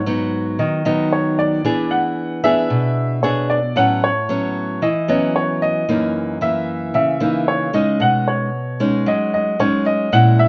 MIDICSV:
0, 0, Header, 1, 3, 480
1, 0, Start_track
1, 0, Tempo, 530035
1, 1487, Time_signature, 4, 2, 24, 8
1, 9494, End_track
2, 0, Start_track
2, 0, Title_t, "Grand piano"
2, 0, Program_c, 0, 0
2, 0, Note_on_c, 0, 73, 67
2, 537, Note_on_c, 0, 75, 70
2, 554, Note_off_c, 0, 73, 0
2, 762, Note_off_c, 0, 75, 0
2, 775, Note_on_c, 0, 75, 67
2, 1018, Note_off_c, 0, 75, 0
2, 1019, Note_on_c, 0, 73, 68
2, 1256, Note_on_c, 0, 74, 77
2, 1260, Note_off_c, 0, 73, 0
2, 1728, Note_on_c, 0, 78, 72
2, 1746, Note_off_c, 0, 74, 0
2, 2207, Note_on_c, 0, 76, 93
2, 2222, Note_off_c, 0, 78, 0
2, 2923, Note_on_c, 0, 73, 69
2, 2949, Note_off_c, 0, 76, 0
2, 3167, Note_on_c, 0, 74, 72
2, 3172, Note_off_c, 0, 73, 0
2, 3390, Note_off_c, 0, 74, 0
2, 3413, Note_on_c, 0, 78, 83
2, 3657, Note_off_c, 0, 78, 0
2, 3657, Note_on_c, 0, 73, 84
2, 4370, Note_on_c, 0, 75, 85
2, 4393, Note_off_c, 0, 73, 0
2, 4601, Note_off_c, 0, 75, 0
2, 4615, Note_on_c, 0, 75, 78
2, 4851, Note_on_c, 0, 73, 72
2, 4858, Note_off_c, 0, 75, 0
2, 5090, Note_on_c, 0, 75, 81
2, 5096, Note_off_c, 0, 73, 0
2, 5814, Note_on_c, 0, 76, 80
2, 5830, Note_off_c, 0, 75, 0
2, 6279, Note_off_c, 0, 76, 0
2, 6292, Note_on_c, 0, 76, 78
2, 6774, Note_on_c, 0, 73, 75
2, 6784, Note_off_c, 0, 76, 0
2, 7013, Note_on_c, 0, 75, 80
2, 7018, Note_off_c, 0, 73, 0
2, 7257, Note_off_c, 0, 75, 0
2, 7258, Note_on_c, 0, 78, 84
2, 7476, Note_off_c, 0, 78, 0
2, 7495, Note_on_c, 0, 73, 69
2, 8221, Note_on_c, 0, 75, 85
2, 8233, Note_off_c, 0, 73, 0
2, 8444, Note_off_c, 0, 75, 0
2, 8458, Note_on_c, 0, 75, 78
2, 8695, Note_on_c, 0, 73, 75
2, 8700, Note_off_c, 0, 75, 0
2, 8915, Note_off_c, 0, 73, 0
2, 8932, Note_on_c, 0, 75, 85
2, 9173, Note_on_c, 0, 78, 95
2, 9177, Note_off_c, 0, 75, 0
2, 9394, Note_off_c, 0, 78, 0
2, 9411, Note_on_c, 0, 76, 95
2, 9494, Note_off_c, 0, 76, 0
2, 9494, End_track
3, 0, Start_track
3, 0, Title_t, "Nylon-string guitar"
3, 0, Program_c, 1, 24
3, 0, Note_on_c, 1, 44, 57
3, 58, Note_on_c, 1, 54, 53
3, 61, Note_on_c, 1, 59, 49
3, 64, Note_on_c, 1, 63, 57
3, 507, Note_off_c, 1, 44, 0
3, 534, Note_on_c, 1, 51, 61
3, 734, Note_off_c, 1, 54, 0
3, 735, Note_off_c, 1, 59, 0
3, 737, Note_off_c, 1, 63, 0
3, 772, Note_on_c, 1, 54, 58
3, 776, Note_on_c, 1, 59, 57
3, 778, Note_on_c, 1, 63, 65
3, 1451, Note_off_c, 1, 54, 0
3, 1453, Note_off_c, 1, 59, 0
3, 1454, Note_off_c, 1, 63, 0
3, 1466, Note_off_c, 1, 51, 0
3, 1490, Note_on_c, 1, 52, 64
3, 1491, Note_on_c, 1, 59, 51
3, 1493, Note_on_c, 1, 62, 49
3, 1497, Note_on_c, 1, 68, 58
3, 2169, Note_off_c, 1, 59, 0
3, 2172, Note_off_c, 1, 62, 0
3, 2174, Note_off_c, 1, 68, 0
3, 2206, Note_on_c, 1, 59, 58
3, 2213, Note_on_c, 1, 62, 63
3, 2217, Note_on_c, 1, 68, 59
3, 2425, Note_off_c, 1, 52, 0
3, 2447, Note_on_c, 1, 47, 60
3, 2888, Note_off_c, 1, 59, 0
3, 2891, Note_off_c, 1, 62, 0
3, 2893, Note_off_c, 1, 68, 0
3, 2927, Note_on_c, 1, 59, 52
3, 2932, Note_on_c, 1, 62, 59
3, 2935, Note_on_c, 1, 68, 59
3, 3250, Note_off_c, 1, 59, 0
3, 3251, Note_off_c, 1, 62, 0
3, 3253, Note_off_c, 1, 68, 0
3, 3383, Note_off_c, 1, 47, 0
3, 3403, Note_on_c, 1, 45, 61
3, 3408, Note_on_c, 1, 54, 49
3, 3411, Note_on_c, 1, 61, 52
3, 3413, Note_on_c, 1, 59, 49
3, 3716, Note_off_c, 1, 54, 0
3, 3716, Note_off_c, 1, 59, 0
3, 3718, Note_off_c, 1, 61, 0
3, 3886, Note_on_c, 1, 54, 49
3, 3891, Note_on_c, 1, 59, 48
3, 3895, Note_on_c, 1, 61, 52
3, 4342, Note_off_c, 1, 45, 0
3, 4364, Note_off_c, 1, 54, 0
3, 4366, Note_off_c, 1, 59, 0
3, 4366, Note_on_c, 1, 52, 66
3, 4367, Note_off_c, 1, 61, 0
3, 4603, Note_on_c, 1, 54, 56
3, 4608, Note_on_c, 1, 59, 55
3, 4613, Note_on_c, 1, 61, 57
3, 5287, Note_off_c, 1, 54, 0
3, 5288, Note_off_c, 1, 59, 0
3, 5291, Note_off_c, 1, 61, 0
3, 5302, Note_off_c, 1, 52, 0
3, 5331, Note_on_c, 1, 42, 55
3, 5331, Note_on_c, 1, 52, 49
3, 5334, Note_on_c, 1, 58, 47
3, 5339, Note_on_c, 1, 63, 54
3, 5770, Note_off_c, 1, 52, 0
3, 5772, Note_off_c, 1, 58, 0
3, 5775, Note_off_c, 1, 63, 0
3, 5805, Note_on_c, 1, 52, 49
3, 5810, Note_on_c, 1, 58, 51
3, 6266, Note_off_c, 1, 42, 0
3, 6286, Note_on_c, 1, 49, 57
3, 6488, Note_off_c, 1, 52, 0
3, 6490, Note_off_c, 1, 58, 0
3, 6524, Note_on_c, 1, 52, 50
3, 6528, Note_on_c, 1, 58, 54
3, 6531, Note_on_c, 1, 63, 60
3, 6967, Note_off_c, 1, 52, 0
3, 6969, Note_off_c, 1, 58, 0
3, 6971, Note_off_c, 1, 63, 0
3, 7004, Note_on_c, 1, 56, 52
3, 7008, Note_on_c, 1, 61, 53
3, 7013, Note_on_c, 1, 63, 56
3, 7223, Note_off_c, 1, 49, 0
3, 7244, Note_on_c, 1, 47, 62
3, 7687, Note_off_c, 1, 56, 0
3, 7689, Note_off_c, 1, 61, 0
3, 7692, Note_off_c, 1, 63, 0
3, 7969, Note_on_c, 1, 56, 54
3, 7974, Note_on_c, 1, 61, 51
3, 7977, Note_on_c, 1, 63, 57
3, 8182, Note_off_c, 1, 47, 0
3, 8208, Note_on_c, 1, 54, 62
3, 8650, Note_off_c, 1, 56, 0
3, 8652, Note_off_c, 1, 61, 0
3, 8654, Note_off_c, 1, 63, 0
3, 8689, Note_on_c, 1, 56, 50
3, 8692, Note_on_c, 1, 61, 54
3, 8697, Note_on_c, 1, 63, 63
3, 9130, Note_off_c, 1, 56, 0
3, 9131, Note_off_c, 1, 61, 0
3, 9134, Note_off_c, 1, 63, 0
3, 9144, Note_off_c, 1, 54, 0
3, 9168, Note_on_c, 1, 56, 49
3, 9169, Note_on_c, 1, 46, 56
3, 9175, Note_on_c, 1, 61, 45
3, 9178, Note_on_c, 1, 64, 57
3, 9494, Note_off_c, 1, 46, 0
3, 9494, Note_off_c, 1, 56, 0
3, 9494, Note_off_c, 1, 61, 0
3, 9494, Note_off_c, 1, 64, 0
3, 9494, End_track
0, 0, End_of_file